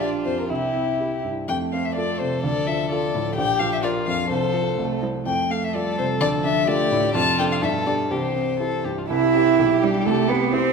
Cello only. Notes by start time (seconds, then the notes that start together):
Already playing: D4
0.50 E4
1.48 A3
2.43 F3
4.30 F3
4.78 A3
5.02 G3
5.15 F3
5.26 A3
5.74 G3
6.21 F3
6.68 A3
7.15 C3
7.62 B2
8.10 E3
9.09 E4
9.83 G3
10.05 A3
10.28 B3
10.53 C4